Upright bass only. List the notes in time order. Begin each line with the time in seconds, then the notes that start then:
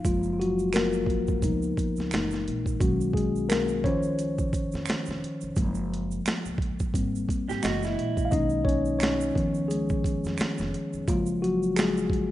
0.05 F#1
1.43 C#2
1.98 C#2
2.13 F#1
2.48 A#1
2.81 B1
3.85 C#2
4.54 muted upright bass stroke
4.74 F2
4.89 muted upright bass stroke
5.08 F1
5.43 F1
5.57 F#1
6.26 muted upright bass stroke
6.46 C#2
6.95 G#1
7.30 muted upright bass stroke
7.49 G#1
7.64 F#1
7.98 A#1
8.33 B1
9.36 C#2
10.05 muted upright bass stroke
10.25 F2
10.40 muted upright bass stroke
10.59 F1
10.94 F1
11.08 F#1